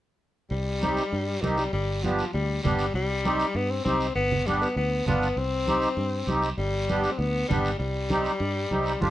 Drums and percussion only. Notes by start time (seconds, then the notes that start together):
0.50 high conga, long guiro
0.81 high conga, short guiro
0.97 short guiro
1.13 high conga, long guiro
1.42 high conga, short guiro
1.57 short guiro
1.73 high conga, long guiro
2.03 high conga, short guiro
2.18 short guiro
2.33 high conga, long guiro
2.63 high conga, low conga, short guiro
2.78 short guiro
2.94 high conga, long guiro
3.24 high conga, short guiro
3.39 short guiro
3.54 high conga, long guiro
3.85 high conga, short guiro
4.00 short guiro
4.15 high conga, long guiro
4.32 low conga
4.46 high conga, short guiro
4.62 short guiro
4.77 high conga, long guiro
5.07 high conga, low conga, short guiro
5.23 short guiro
5.37 high conga, long guiro
5.67 high conga, short guiro
5.82 short guiro
5.97 high conga, long guiro
6.27 high conga, short guiro
6.43 short guiro
6.58 high conga, long guiro
6.88 high conga, short guiro
7.04 short guiro
7.19 high conga, long guiro
7.50 high conga, low conga, short guiro
7.65 short guiro
7.80 high conga, long guiro
8.10 high conga, short guiro
8.25 short guiro
8.40 high conga, long guiro
8.71 high conga, short guiro
8.86 short guiro
9.02 high conga, long guiro